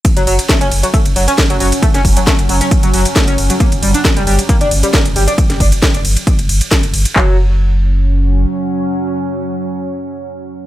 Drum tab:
RD |xxxxxxxxxxxxxxxx|xxxx-xxxxxxxxxxx|xxxxxxxxxxxxxxxx|xxxxxxxxxxxxxxxx|
HH |xxoxxxoxxxoxxxox|xxoxxxoxxxoxxxox|xxoxxxoxxxoxxxox|xxoxxxoxxxoxxxox|
CP |----------------|----------------|----------------|----------------|
SD |----o-------o---|-o--o-------o---|----o-------o---|-o--o-------o---|
BD |o---o---o---o---|o-o-o---o---o---|o---o---o---o---|o-o-o---o---o---|

RD |----------------|----------------|
HH |----------------|----------------|
CP |x---------------|----------------|
SD |----------------|----------------|
BD |o---------------|----------------|